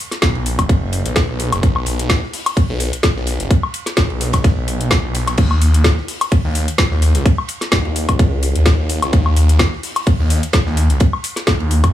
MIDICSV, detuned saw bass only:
0, 0, Header, 1, 2, 480
1, 0, Start_track
1, 0, Tempo, 468750
1, 1670, Time_signature, 4, 2, 24, 8
1, 12216, End_track
2, 0, Start_track
2, 0, Title_t, "Detuned saw bass"
2, 0, Program_c, 0, 39
2, 230, Note_on_c, 0, 35, 93
2, 341, Note_off_c, 0, 35, 0
2, 362, Note_on_c, 0, 35, 94
2, 581, Note_off_c, 0, 35, 0
2, 602, Note_on_c, 0, 30, 98
2, 1061, Note_off_c, 0, 30, 0
2, 1081, Note_on_c, 0, 35, 99
2, 1300, Note_off_c, 0, 35, 0
2, 1321, Note_on_c, 0, 35, 100
2, 1540, Note_off_c, 0, 35, 0
2, 1562, Note_on_c, 0, 30, 93
2, 1653, Note_off_c, 0, 30, 0
2, 1670, Note_on_c, 0, 35, 104
2, 1893, Note_off_c, 0, 35, 0
2, 1909, Note_on_c, 0, 35, 101
2, 2260, Note_off_c, 0, 35, 0
2, 2760, Note_on_c, 0, 35, 95
2, 2980, Note_off_c, 0, 35, 0
2, 3240, Note_on_c, 0, 35, 100
2, 3460, Note_off_c, 0, 35, 0
2, 3479, Note_on_c, 0, 30, 92
2, 3572, Note_off_c, 0, 30, 0
2, 4069, Note_on_c, 0, 35, 94
2, 4180, Note_off_c, 0, 35, 0
2, 4200, Note_on_c, 0, 35, 97
2, 4420, Note_off_c, 0, 35, 0
2, 4440, Note_on_c, 0, 35, 99
2, 4660, Note_off_c, 0, 35, 0
2, 4679, Note_on_c, 0, 35, 96
2, 5139, Note_off_c, 0, 35, 0
2, 5159, Note_on_c, 0, 35, 101
2, 5492, Note_off_c, 0, 35, 0
2, 5510, Note_on_c, 0, 39, 103
2, 5733, Note_off_c, 0, 39, 0
2, 5749, Note_on_c, 0, 39, 96
2, 6100, Note_off_c, 0, 39, 0
2, 6601, Note_on_c, 0, 39, 96
2, 6820, Note_off_c, 0, 39, 0
2, 7081, Note_on_c, 0, 39, 100
2, 7300, Note_off_c, 0, 39, 0
2, 7320, Note_on_c, 0, 37, 98
2, 7412, Note_off_c, 0, 37, 0
2, 7910, Note_on_c, 0, 39, 94
2, 8020, Note_off_c, 0, 39, 0
2, 8040, Note_on_c, 0, 39, 96
2, 8260, Note_off_c, 0, 39, 0
2, 8281, Note_on_c, 0, 37, 104
2, 8740, Note_off_c, 0, 37, 0
2, 8762, Note_on_c, 0, 39, 96
2, 8981, Note_off_c, 0, 39, 0
2, 9002, Note_on_c, 0, 39, 99
2, 9221, Note_off_c, 0, 39, 0
2, 9242, Note_on_c, 0, 37, 96
2, 9333, Note_off_c, 0, 37, 0
2, 9350, Note_on_c, 0, 39, 100
2, 9573, Note_off_c, 0, 39, 0
2, 9590, Note_on_c, 0, 39, 97
2, 9940, Note_off_c, 0, 39, 0
2, 10439, Note_on_c, 0, 39, 97
2, 10659, Note_off_c, 0, 39, 0
2, 10921, Note_on_c, 0, 39, 100
2, 11140, Note_off_c, 0, 39, 0
2, 11162, Note_on_c, 0, 37, 95
2, 11253, Note_off_c, 0, 37, 0
2, 11750, Note_on_c, 0, 39, 97
2, 11860, Note_off_c, 0, 39, 0
2, 11881, Note_on_c, 0, 39, 94
2, 12100, Note_off_c, 0, 39, 0
2, 12122, Note_on_c, 0, 41, 101
2, 12216, Note_off_c, 0, 41, 0
2, 12216, End_track
0, 0, End_of_file